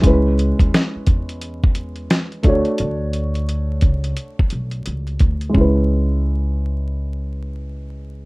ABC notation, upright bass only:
X:1
M:4/4
L:1/16
Q:"Swing 16ths" 1/4=87
K:C#m
V:1 name="Upright bass" clef=bass
C,,3 D,, z2 E,,6 z2 =D,, z | =D,,6 C,,2 z2 B,,,2 C,,2 D,,2 | C,,16 |]